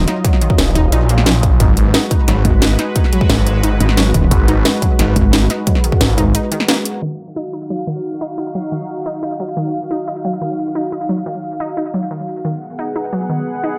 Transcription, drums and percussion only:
0.08 snare soft
0.08 closed hi-hat medium
0.25 kick loud
0.25 closed hi-hat medium
0.33 snare soft
0.41 closed hi-hat medium
0.50 kick loud
0.58 snare loud
0.58 closed hi-hat medium
0.75 kick medium
0.75 closed hi-hat medium
0.92 closed hi-hat medium
1.09 closed hi-hat medium
1.18 snare medium
1.26 snare loud
1.26 closed hi-hat medium
1.43 kick loud
1.43 closed hi-hat medium
1.60 kick loud
1.60 closed hi-hat medium
1.77 closed hi-hat medium
1.94 snare loud
1.94 closed hi-hat medium
2.11 kick loud
2.11 closed hi-hat medium
2.28 snare medium
2.28 closed hi-hat medium
2.45 kick loud
2.45 closed hi-hat medium
2.62 snare loud
2.62 closed hi-hat medium
2.79 snare soft
2.79 closed hi-hat medium
2.96 kick loud
2.96 closed hi-hat loud
3.04 snare soft
3.13 closed hi-hat medium
3.21 kick loud
3.30 snare loud
3.30 closed hi-hat loud
3.47 closed hi-hat medium
3.63 closed hi-hat loud
3.80 closed hi-hat medium
3.89 snare medium
3.97 snare loud
3.97 closed hi-hat loud
4.14 kick loud
4.14 closed hi-hat medium
4.31 kick loud
4.31 closed hi-hat loud
4.48 closed hi-hat medium
4.65 snare loud
4.65 closed hi-hat loud
4.82 kick loud
4.82 closed hi-hat medium
4.99 snare medium
4.99 closed hi-hat loud
5.16 kick loud
5.16 closed hi-hat medium
5.33 snare loud
5.33 closed hi-hat loud
5.50 snare soft
5.50 closed hi-hat medium
5.67 kick loud
5.67 closed hi-hat loud
5.75 snare soft
5.84 closed hi-hat medium
5.92 kick loud
6.01 snare loud
6.01 closed hi-hat loud
6.18 kick medium
6.18 closed hi-hat medium
6.35 closed hi-hat loud
6.52 closed hi-hat medium
6.60 snare medium
6.68 snare loud
6.68 closed hi-hat loud
6.85 closed hi-hat medium

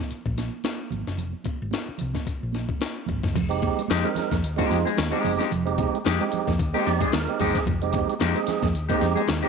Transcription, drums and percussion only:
0.11 closed hi-hat medium
0.26 kick medium
0.38 snare soft
0.38 closed hi-hat medium
0.38 high conga medium
0.64 snare medium
0.64 closed hi-hat medium
0.64 muted conga soft
0.64 high conga medium
0.91 closed hi-hat medium
0.91 high conga medium
0.91 low conga medium
1.07 snare soft
1.18 closed hi-hat medium
1.18 low conga medium
1.32 muted conga soft
1.44 kick medium
1.44 closed hi-hat medium
1.44 high conga medium
1.71 snare medium
1.71 closed hi-hat medium
1.71 high conga medium
1.86 muted conga soft
1.98 closed hi-hat medium
1.98 low conga medium
2.14 kick medium
2.14 snare soft
2.14 high conga medium
2.26 kick medium
2.26 closed hi-hat medium
2.26 muted conga soft
2.40 muted conga soft
2.53 snare soft
2.53 closed hi-hat medium
2.53 high conga medium
2.69 kick medium
2.80 snare medium
2.80 closed hi-hat medium
2.80 high conga medium
3.06 kick medium
3.06 closed hi-hat soft
3.06 high conga medium
3.06 low conga medium
3.23 kick medium
3.23 snare soft
3.33 kick loud
3.33 closed hi-hat medium
3.33 crash loud
3.33 low conga medium
3.51 closed hi-hat soft
3.62 kick medium
3.62 closed hi-hat medium
3.62 high conga medium
3.79 closed hi-hat medium
3.88 snare loud
3.88 closed hi-hat medium
3.88 muted conga soft
3.88 high conga medium
4.04 closed hi-hat soft
4.04 muted conga soft
4.15 snare soft
4.15 closed hi-hat medium
4.15 low conga medium
4.32 kick medium
4.32 snare soft
4.32 closed hi-hat soft
4.44 closed hi-hat medium
4.58 kick medium
4.58 closed hi-hat soft
4.58 muted conga soft
4.70 snare soft
4.70 closed hi-hat medium
4.70 high conga medium
4.87 closed hi-hat medium
4.97 snare loud
4.97 closed hi-hat medium
4.97 muted conga soft
4.97 high conga medium
5.12 closed hi-hat soft
5.24 open hi-hat medium
5.24 high conga loud
5.24 low conga loud
5.40 snare soft
5.40 closed hi-hat medium
5.52 closed hi-hat medium
5.52 low conga medium
5.67 closed hi-hat soft
5.67 muted conga soft
5.78 kick loud
5.78 closed hi-hat medium
5.78 high conga medium
5.95 closed hi-hat medium
6.06 snare loud
6.06 closed hi-hat medium
6.06 high conga loud
6.21 closed hi-hat soft
6.21 muted conga soft
6.32 closed hi-hat medium
6.32 low conga loud
6.48 kick medium
6.48 snare soft
6.48 closed hi-hat soft
6.59 kick medium
6.59 closed hi-hat medium
6.75 closed hi-hat soft
6.87 snare soft
6.87 closed hi-hat medium
6.87 high conga medium
7.01 kick loud
7.01 closed hi-hat medium
7.12 snare loud
7.12 closed hi-hat medium
7.12 muted conga soft
7.12 high conga medium
7.27 closed hi-hat soft
7.40 kick medium
7.40 open hi-hat medium
7.40 high conga medium
7.40 low conga medium
7.55 kick loud
7.55 snare soft
7.55 closed hi-hat medium
7.67 kick loud
7.67 closed hi-hat medium
7.67 low conga medium
7.82 closed hi-hat soft
7.93 kick medium
7.93 closed hi-hat medium
7.93 high conga medium
8.09 closed hi-hat medium
8.20 snare loud
8.20 closed hi-hat medium
8.20 muted conga soft
8.20 high conga loud
8.36 closed hi-hat soft
8.47 snare soft
8.47 closed hi-hat medium
8.47 low conga medium
8.63 kick medium
8.63 snare soft
8.63 closed hi-hat soft
8.75 closed hi-hat medium
8.75 muted conga soft
8.89 kick medium
8.89 closed hi-hat soft
8.89 muted conga soft
9.00 snare soft
9.00 closed hi-hat medium
9.00 high conga medium
9.17 closed hi-hat medium
9.28 snare loud
9.28 closed hi-hat medium
9.28 high conga medium
9.43 closed hi-hat soft
9.43 muted conga soft

